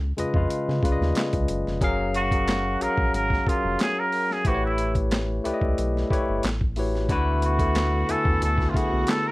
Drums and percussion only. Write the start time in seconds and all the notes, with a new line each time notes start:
0.18 closed hi-hat
0.34 kick
0.50 closed hi-hat
0.69 snare
0.83 kick, closed hi-hat
1.02 snare
1.15 snare, clap, closed hi-hat
1.33 kick, closed hi-hat
1.48 closed hi-hat
1.67 snare
1.81 kick, closed hi-hat
2.14 closed hi-hat
2.31 kick, closed hi-hat
2.48 snare, clap, closed hi-hat
2.81 closed hi-hat
2.98 kick
3.14 closed hi-hat
3.30 kick, snare
3.47 kick, closed hi-hat
3.79 snare, clap, closed hi-hat
4.12 open hi-hat
4.31 snare
4.45 kick, closed hi-hat
4.78 closed hi-hat
4.95 kick, closed hi-hat
5.11 snare, clap, closed hi-hat
5.45 closed hi-hat
5.61 kick
5.78 closed hi-hat
5.97 snare
6.10 kick, closed hi-hat
6.43 snare, clap, closed hi-hat
6.61 kick
6.76 open hi-hat
6.95 snare
7.09 kick, closed hi-hat
7.42 closed hi-hat
7.59 kick, closed hi-hat
7.75 snare, clap, closed hi-hat
8.09 closed hi-hat
8.25 kick
8.42 closed hi-hat
8.58 kick, snare
8.74 kick, closed hi-hat
9.07 snare, clap, closed hi-hat